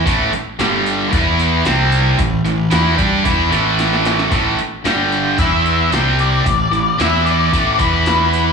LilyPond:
<<
  \new Staff \with { instrumentName = "Lead electric guitar" } { \time 4/4 \key a \minor \tempo 4 = 112 r1 | r1 | r4 g''4 e''4 g''8 d''8~ | d''4 e''8 d''4 b'4. | }
  \new Staff \with { instrumentName = "Distorted electric guitar" } { \clef bass \time 4/4 \key a \minor <a, e a>8 r8 <g, d g>4 <e b e'>4 <c g c'>4 | <a, e>8 <a, e>8 <e b e'>8 <g d' g'>8 <e b e'>8 <a, e a>4. | <a, e a>8 r8 <g, d g>4 <e b e'>4 <c g c'>4 | <a, e>8 <a, e>8 <e b e'>4 <a, e a>8 <e b e'>4. | }
  \new Staff \with { instrumentName = "Fingered electric bass" } { \clef bass \time 4/4 \key a \minor a,,8 r8 g,,4 e,4 c,4 | a,,8 a,,8 e,8 g,8 e,8 a,,4. | a,,8 r8 g,,4 e,4 c,4 | a,,8 a,,8 e,4 a,,8 e,4. | }
  \new DrumStaff \with { instrumentName = "Drums" } \drummode { \time 4/4 <hho bd>8 hho8 <hho sn>8 hho8 <hho bd>8 hho8 <hho sn>8 hho8 | <hho bd>8 hho8 <hho sn>8 <hho bd>8 <hho bd>8 <hho sn>8 <hho sn>16 sn16 <hho sn>16 sn16 | <hho bd>8 hho8 <hho sn>8 hho8 <hho bd>8 hho8 <hho sn>8 hho8 | <hho bd>8 hho8 <hho sn>8 hho8 <hho bd>8 <hho bd>8 <hho sn>8 hho8 | }
>>